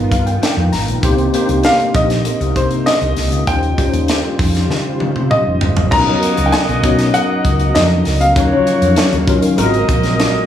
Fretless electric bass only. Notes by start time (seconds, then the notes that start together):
0.12 G2
0.57 F2
0.72 G#1
0.88 A#1
1.03 C2
1.49 C2
1.95 A#1
2.40 C2
2.56 C3
3.01 C2
3.17 C2
3.32 C#2
3.93 D#2
4.39 F2
4.70 D#3
5.01 D#3
5.16 C3
5.46 F1
5.62 G1
5.77 G#1
5.92 B1
6.38 C#2
6.69 B1
6.84 B2
7.45 C#2
7.75 F2
8.06 C#2
8.36 D#2
8.82 F2
9.13 D#2
9.28 D#3
9.58 G#1
9.89 A#1